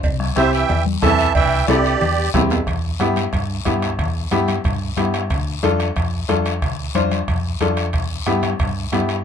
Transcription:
0.03 fingered electric bass C2, bombo low, cowbell, high conga, long guiro
0.20 bombo rim, high conga
0.36 fingered electric bass C2, trombone C3, upright piano C4 E4 G4, accordion C5 E5, bombo rim, high conga, short guiro
0.53 trombone E3, accordion E5 G5, short guiro
0.69 fingered electric bass E2, cowbell, high conga, low conga, long guiro
0.86 high conga
1.02 fingered electric bass E2, trombone E3, upright piano C4 E4 A4, accordion E5 A5, bombo low, bombo rim, high conga, low timbale, short guiro
1.19 short guiro
1.35 fingered electric bass C2, trombone E3, accordion E5 G5, bombo low, cowbell, high conga, long guiro
1.67 fingered electric bass C2, trombone G2, upright piano C4 E4 A4, accordion G4 D5, bombo rim, high conga, high timbale, short guiro
1.84 short guiro
2.01 fingered electric bass E2, cowbell, high conga, low conga, long guiro
2.34 fingered electric bass E2, upright piano C4 E4 G4, bombo low, bombo rim, high conga, low timbale, short guiro
2.50 low timbale, short guiro
2.67 fingered electric bass E2, bombo low, bombo rim, high timbale, long guiro
3.00 fingered electric bass G2, upright piano B3 E4 G4, bombo rim, high conga, high timbale, short guiro
3.16 bombo rim, high conga, high timbale, short guiro
3.33 fingered electric bass G2, bombo low, bombo rim, high timbale, long guiro
3.65 fingered electric bass G2, upright piano B3 E4 G4, bombo low, bombo rim, high conga, high timbale, short guiro
3.82 bombo rim, high timbale, short guiro
3.99 fingered electric bass E2, bombo low, bombo rim, high timbale, long guiro
4.31 fingered electric bass G2, upright piano B3 E4 G4, bombo rim, high conga, high timbale, short guiro
4.48 bombo rim, high conga, high timbale, short guiro
4.64 fingered electric bass G2, bombo low, bombo rim, high timbale, long guiro
4.97 fingered electric bass G2, upright piano B3 E4 G4, bombo rim, high conga, high timbale, short guiro
5.14 bombo rim, high timbale, short guiro
5.30 fingered electric bass D2, bombo low, bombo rim, high timbale, long guiro
5.63 fingered electric bass F2, upright piano D4 F4 A4, bombo rim, high conga, high timbale, short guiro
5.80 bombo rim, high timbale, short guiro
5.96 fingered electric bass F2, bombo low, bombo rim, high timbale, long guiro
6.28 fingered electric bass F2, upright piano D4 F4 A4, bombo rim, high conga, high timbale, short guiro
6.46 bombo rim, high timbale, short guiro
6.62 fingered electric bass D2, bombo low, bombo rim, high timbale, long guiro
6.95 fingered electric bass F2, upright piano D4 F4 C5, bombo rim, high conga, high timbale, short guiro
7.11 bombo rim, high conga, high timbale, short guiro
7.28 fingered electric bass F2, bombo low, bombo rim, high timbale, long guiro
7.60 fingered electric bass F2, upright piano D4 F4 A4, bombo rim, high conga, high timbale, short guiro
7.77 bombo rim, high timbale, short guiro
7.93 fingered electric bass E2, bombo low, bombo rim, high timbale, long guiro
8.26 fingered electric bass G2, upright piano B3 E4 G4, bombo rim, high conga, high timbale, short guiro
8.43 bombo rim, high conga, high timbale, short guiro
8.59 fingered electric bass G2, bombo low, bombo rim, high timbale, long guiro
8.92 fingered electric bass G2, upright piano B3 E4 G4, bombo rim, high conga, high timbale, low timbale, short guiro
9.09 bombo rim, high timbale, short guiro

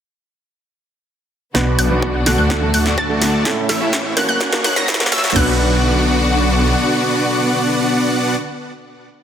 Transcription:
1.54 detuned saw bass B1, grand piano B2 B3 D4 F#4 B4, string section D3 B3 F#4, supersaw synth B3 D4 F#4 D5 F#5, synth pluck F#6, kick, snare, riser
1.79 detuned saw bass B1, supersaw synth B3 D4 F#4 D5 F#5, synth pluck F#6, open hi-hat
1.90 grand piano B2 B3 D4 F#4 B4
2.02 kick
2.26 detuned saw bass B1, grand piano D3 A3 D4 F#4 A4, supersaw synth B3 D4 F#4 D5 F#5, synth pluck F#6, snare, open hi-hat
2.38 detuned saw bass D2, supersaw synth A3 D4 F#4 D5 F#5, synth pluck F#6
2.50 string section A3, kick, snare
2.61 grand piano D3 A3 D4 F#4 A4
2.74 detuned saw bass D2, supersaw synth A3 D4 F#4 D5 F#5, synth pluck F#6, open hi-hat
2.86 snare
2.98 detuned saw bass D2, supersaw synth A3 D4 F#4 D5 A5, synth pluck A6, kick
3.09 grand piano D3 A3 D4 F#4 A4
3.22 snare, open hi-hat
3.45 grand piano A2 A3 C#4 E4 A4, string section C#3 E4, kick, snare
3.69 detuned saw bass A1, supersaw synth A3 C#4 E4 C#5 E5, synth pluck E6, snare, open hi-hat
3.80 grand piano A2 A3 C#4 E4 A4
3.93 kick, snare
4.16 detuned saw bass A1, supersaw synth A3 C#4 E4 C#5 F#5, grand piano A#3 C#4 F#4 A#4, synth pluck F#6, snare, open hi-hat
4.29 detuned saw bass F#1, supersaw synth A#3 C#4 F#4 C#5 F#5, synth pluck F#6
4.40 string section A#3 F#4, kick, snare
4.52 grand piano A#3 C#4 F#4 A#4, snare
4.64 detuned saw bass F#1, supersaw synth A#3 C#4 F#4 C#5 F#5, synth pluck F#6, snare, open hi-hat
4.76 detuned saw bass F#1, supersaw synth A#3 C#4 F#4 C#5 A#5, synth pluck A#6, snare
4.88 kick, snare
4.94 snare
5.00 grand piano A#3 C#4 F#4 A#4, snare
5.06 snare
5.12 detuned saw bass F#2, supersaw synth A#3 C#4 F#4 C#5 E5, synth pluck E6, snare, open hi-hat
5.18 snare
5.24 snare
5.30 snare
5.34 detuned saw bass B1, string section D3 B3 F#4, grand piano B3 D4 F#4 B4, supersaw synth B3 D4 F#4 D5 F#5, synth pluck F#6, snare, floor tom, crash

